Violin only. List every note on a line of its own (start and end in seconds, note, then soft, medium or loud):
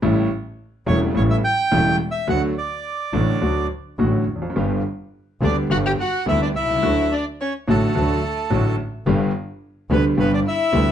5.43 5.56 D4 medium
5.71 5.77 F#4 medium
5.86 5.92 G4 medium
6.01 6.26 F#4 medium
6.28 6.41 E4 medium
6.42 6.48 D4 medium
6.56 7.08 E4 medium
7.12 7.25 D4 medium
7.41 7.53 C#4 medium
7.69 8.75 A3 medium
9.91 10.03 B3 medium
10.19 10.31 B3 medium
10.33 10.39 D4 medium
10.47 10.92 E4 medium